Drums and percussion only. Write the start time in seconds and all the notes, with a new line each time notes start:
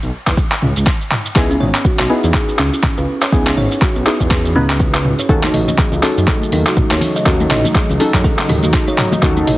0.02 maracas
0.27 kick, clap, maracas
0.37 kick, maracas
0.52 clap, maracas
0.62 mid tom
0.76 maracas
0.86 kick, clap, maracas
1.01 maracas
1.12 clap, mid tom
1.26 maracas
1.36 kick, clap, maracas
1.51 maracas
1.61 mid tom
1.75 clap, maracas
1.85 kick, maracas
1.98 clap, maracas
2.24 maracas
2.34 kick, clap, maracas
2.49 maracas
2.59 clap
2.74 maracas
2.83 kick, clap, mid tom, maracas
2.98 maracas
3.22 clap, maracas
3.32 kick, maracas
3.46 clap, maracas
3.57 mid tom
3.72 maracas
3.82 kick, clap, maracas
3.95 maracas
4.07 clap
4.20 kick, maracas
4.31 kick, clap, maracas
4.45 maracas
4.56 mid tom
4.70 clap, maracas
4.80 kick, maracas
4.94 clap, maracas
5.05 mid tom
5.19 maracas
5.29 kick, muted conga, maracas
5.44 clap, high conga, maracas
5.54 mid tom, open hi-hat
5.68 muted conga, high conga, low conga, maracas
5.78 kick, clap, maracas
5.92 low conga, maracas
6.03 clap, open hi-hat, muted conga
6.18 maracas
6.27 kick, clap, high conga, maracas
6.42 muted conga, maracas
6.52 open hi-hat, high conga
6.67 clap, maracas
6.76 kick, mid tom, maracas
6.91 clap, muted conga, maracas
7.01 open hi-hat, low conga
7.16 maracas
7.26 kick, clap, muted conga, maracas
7.40 high conga, maracas
7.51 clap, mid tom, open hi-hat
7.64 muted conga, high conga, low conga, maracas
7.75 kick, clap, maracas
7.90 low conga, maracas
8.00 open hi-hat, muted conga
8.14 kick, clap, maracas
8.24 kick, maracas
8.38 clap, muted conga, maracas
8.49 mid tom, open hi-hat, low conga
8.63 high conga, maracas
8.73 kick, clap, maracas
8.87 muted conga, maracas
8.98 clap, mid tom, open hi-hat
9.12 high conga, low conga, maracas
9.22 kick, clap, muted conga, maracas
9.37 high conga, maracas
9.47 mid tom, open hi-hat